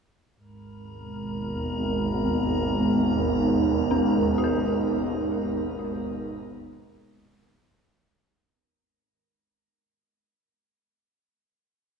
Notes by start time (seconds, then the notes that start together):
0.36 G#1 D#2 G#3 A#4
0.92 B3
1.03 D#4
1.20 A#4
3.91 C#4
4.38 F#4
4.44 A#4